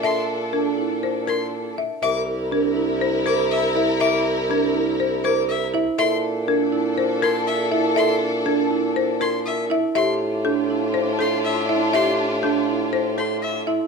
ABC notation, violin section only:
X:1
M:4/4
L:1/8
Q:1/4=121
K:Bblyd
V:1 name="Violin section"
[DA]6- [DA] z | [EB]8- | [EB]6- [EB] z | [DA]8- |
[DA]6- [DA] z | [DF]8- | [DF]6- [DF] z |]